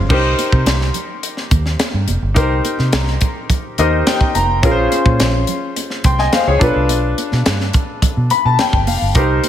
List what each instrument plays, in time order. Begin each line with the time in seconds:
Already playing: grand piano C#4 F4 G#4 C5
0.09 fingered electric bass C2, grand piano D#4 G4 A#4 C5, kick, crash, muted conga
0.39 closed hi-hat, muted conga
0.52 fingered electric bass C3, kick
0.66 fingered electric bass C2, snare, closed hi-hat, high conga
0.81 snare
0.94 closed hi-hat, low conga
1.23 closed hi-hat
1.37 snare
1.51 fingered electric bass D#2, kick, closed hi-hat, muted conga, low conga
1.66 snare
1.79 snare, closed hi-hat, high conga
1.94 fingered electric bass G2
2.08 fingered electric bass F1, closed hi-hat, high conga
2.22 fingered electric bass G1
2.34 fingered electric bass C2, grand piano D#4 G4 A#4 C5, kick, closed hi-hat, muted conga
2.65 closed hi-hat, muted conga
2.79 fingered electric bass C3, snare
2.93 fingered electric bass C2, snare, closed hi-hat, high conga
3.07 snare
3.21 kick, closed hi-hat, low conga
3.50 kick, closed hi-hat, low conga
3.78 fingered electric bass D#2, grand piano D#4 G4 A#4 C5 D#5, closed hi-hat, muted conga
4.07 grand piano G5, snare, closed hi-hat, high conga
4.21 kick
4.35 fingered electric bass F1, grand piano A#5, closed hi-hat, high conga
4.63 fingered electric bass A#1, grand piano C#4 F4 G#4 A#4, kick, closed hi-hat, muted conga
4.71 grand piano C5
4.92 closed hi-hat, muted conga
5.06 fingered electric bass A#2, kick
5.20 fingered electric bass A#1, snare, closed hi-hat, high conga
5.47 closed hi-hat, low conga
5.76 closed hi-hat, muted conga
5.90 snare
6.04 fingered electric bass C2, grand piano G5 C6, kick, closed hi-hat, muted conga, low conga
6.19 grand piano D#5 G#5, snare
6.33 grand piano C5 F5, snare, closed hi-hat, high conga
6.47 fingered electric bass C#2, grand piano G#4 C#5
6.59 fingered electric bass B1, grand piano D4 F4 A4 B4, kick, closed hi-hat, high conga
6.76 fingered electric bass C2
6.89 fingered electric bass B1, closed hi-hat, muted conga
7.18 closed hi-hat, muted conga
7.32 fingered electric bass B2, snare
7.46 fingered electric bass G2, snare, closed hi-hat, high conga
7.60 snare
7.73 kick, closed hi-hat, low conga
8.02 kick, closed hi-hat, muted conga, low conga
8.17 fingered electric bass B2
8.30 grand piano B5, closed hi-hat, muted conga
8.45 fingered electric bass B2, grand piano A5
8.59 grand piano G5, snare, closed hi-hat, high conga
8.73 fingered electric bass G1, kick
8.87 fingered electric bass F1, grand piano F5, open hi-hat, high conga
9.02 fingered electric bass G1
9.15 fingered electric bass C2, grand piano D#4 G4 A#4 C5, kick, closed hi-hat, muted conga
9.44 closed hi-hat, muted conga